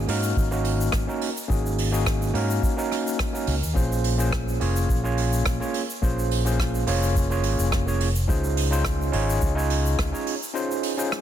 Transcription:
0.08 G#2 A#3 C#4 D#4 F#4 A#4, open hi-hat
0.23 shaker
0.37 G#1, kick, shaker
0.51 A#3 C#4 D#4 F#4 A#4, shaker
0.64 open hi-hat
0.81 shaker
0.92 G#1, kick, cross-stick, shaker
1.07 A#3 C#4 D#4 F#4 A#4, shaker
1.21 open hi-hat
1.37 shaker
1.48 G#1 A#3 C#4 D#4 F#4 G#4, kick, shaker
1.66 shaker
1.78 open hi-hat
1.92 A#3 C#4 D#4 F#4 G#4, shaker
2.06 kick, cross-stick, shaker
2.22 shaker
2.33 G#2 A#3 C#4 D#4 F#4 A#4, open hi-hat
2.50 shaker
2.63 kick, shaker
2.76 A#3 C#4 D#4 F#4 A#4, shaker
2.92 cross-stick, open hi-hat
3.07 shaker
3.19 kick, cross-stick, shaker
3.32 A#3 C#4 D#4 F#4 A#4, shaker
3.47 C#2, open hi-hat
3.63 D#2, shaker
3.74 A#1 A#3 C#4 F4 G#4 C5, kick, shaker
3.92 shaker
4.04 open hi-hat
4.18 A#3 C#4 F4 G#4 C5, shaker
4.32 kick, cross-stick
4.48 shaker
4.59 F1 A#3 C#4 F4 G#4 C#5, open hi-hat
4.76 shaker
4.89 A#1, kick, shaker
5.03 A#3 C#4 F4 G#4 C#5, shaker
5.18 open hi-hat
5.33 shaker
5.46 A#1, kick, cross-stick, shaker
5.60 A#3 C#4 F4 G#4 C#5, shaker
5.74 open hi-hat
5.90 shaker
6.02 A#1 A#3 C#4 F4 G#4 C5, kick, shaker
6.19 shaker
6.31 open hi-hat
6.45 A#3 C#4 F4 G#4 C5, shaker
6.59 kick, cross-stick, shaker
6.75 shaker
6.87 F1 A#3 C#4 F4 G#4 C#5, open hi-hat
7.03 shaker
7.16 kick, shaker
7.30 A#3 C#4 F4 G#4 C#5, shaker
7.43 G#1, open hi-hat
7.59 F1, shaker
7.72 kick, cross-stick, shaker
7.86 A#3 C#4 F4 G#4 C#5, shaker
8.00 open hi-hat
8.16 shaker
8.28 C#2 C#4 D#4 F4 G#4 C5, kick, shaker
8.44 shaker
8.57 open hi-hat
8.70 C#4 D#4 F4 G#4 C5, shaker
8.85 kick, cross-stick, shaker
9.02 shaker
9.12 G#1 C#4 D#4 F4 G#4 C#5, open hi-hat
9.30 shaker
9.41 C#2, kick, shaker
9.55 C#4 D#4 F4 G#4 C#5, shaker
9.70 open hi-hat
9.86 shaker
9.99 C#2, kick, cross-stick, shaker
10.12 C#4 D#4 F4 G#4 C#5, shaker
10.27 open hi-hat
10.43 shaker
10.54 C#4 D#4 F4 G#4 C5, shaker
10.71 shaker
10.83 open hi-hat
10.97 C#4 D#4 F4 G#4 C5, shaker
11.12 cross-stick, shaker

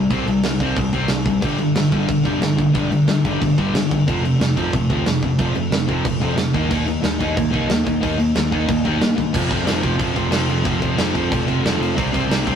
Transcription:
0.10 C2 C3 G3 C4, kick, crash
0.26 C2 C3 G3, crash
0.43 C2 C3 G3, snare, crash
0.60 C2 C3 G3 C4, kick, crash
0.76 C2 C3 G3, kick, crash
0.93 C2 C3 G3 C4, kick, crash
1.08 C2 C3 G3, snare, crash
1.25 C3 G3, kick, crash
1.40 G1 G2 D3 G3, kick, crash
1.44 G2 G3
1.58 G2 D3, crash
1.75 G1 G2 D3, snare, crash
1.91 G1 G2 D3 G3, kick, crash
2.06 G1 G2 D3, kick, crash
2.24 F1 G2 D3 G3, kick, crash
2.40 G1 G2 D3, snare, crash
2.57 G1 G2 D3, kick, crash
2.73 G1 G2 D3 G3, kick, crash
2.91 G1 G2 D3, crash
3.07 G1 G2 D3, snare, crash
3.25 G1 G2 D3 G3, kick, crash
3.41 G1 G2 D3, kick, crash
3.58 G1 G2 D3 G3, kick, crash
3.74 G1 G2 D3, snare, crash
3.91 G2 D3, kick, crash
4.07 F1 F2 C3 F3, kick, crash
4.23 F2 C3, crash
4.40 F1 F2 C3, snare, crash
4.56 F1 F2 C3 F3, kick, crash
4.73 F1 F2 C3, kick, crash
4.89 D2 F2 C3 F3, kick, crash
5.06 F1 F2 C3, snare, crash
5.22 F1 F2 C3, kick, crash
5.38 F1 F2 C3 F3, kick, crash
5.55 F1 F2 C3, crash
5.71 F1 F2 C3, snare, crash
5.87 F1 F2 C3 F3, kick, crash
6.04 F1 F2 C3, kick, crash
6.20 F1 F2 C3 F3, kick, crash
6.36 F1 F2 C3, snare, crash
6.53 D#2 D#3 A#3 D#4, kick, crash
6.68 D#2 D#3 A#3 D#4, kick, crash
6.87 D#3 A#3, crash
7.02 D#2 D#3 A#3, snare, crash
7.19 D#2 D#3 A#3 D#4, kick, crash
7.36 D#2 D#3 A#3, kick, crash
7.50 C2 D#3 A#3 D#4, kick, crash
7.68 D#2 D#3 A#3, snare, crash
7.84 D#2 D#3 A#3, kick, crash
8.00 D#2 D#3 A#3 D#4, kick, crash
8.18 D#2 D#3 A#3, crash
8.35 D#2 D#3 A#3, snare, crash
8.51 D#2 D#3 A#3 D#4, kick, crash
8.68 D#2 D#3 A#3, kick, crash
8.84 D#2 D#3 A#3 D#4, kick, crash
9.00 G2 D#3 A#3, snare, crash
9.15 D#3 A#3, kick, crash
9.33 F1 F2 C3 F3, kick, crash
9.49 F1 F2 C3 F3, kick, crash
9.64 F1 F2 C3 F3, snare, crash
9.80 F1 F2 C3 F3, kick, crash
9.96 F1 F2 C3 F3, kick, crash
10.13 F1 F2 C3 F3, kick, crash
10.30 F1 F2 C3 F3, snare, crash
10.48 F1 F2 C3 F3, crash
10.63 F1 F2 C3 F3, kick, crash
10.80 F1 F2 C3 F3, kick, crash
10.97 F1 F2 C3 F3, snare, crash
11.14 F1 F2 C3 F3, kick, crash
11.29 F1 F2 C3 F3, kick, crash
11.46 F1 F2 C3 F3, kick, crash
11.62 F1 F2 C3 F3, crash
11.66 snare
11.79 F1 F2 C3 F3, crash
11.95 C2 C3 G3 C4, kick, crash
12.12 C2 C3 G3 C4, kick, crash
12.27 C2 C3 G3 C4, crash
12.31 snare
12.43 C2 C3 G3 C4, kick
12.47 crash

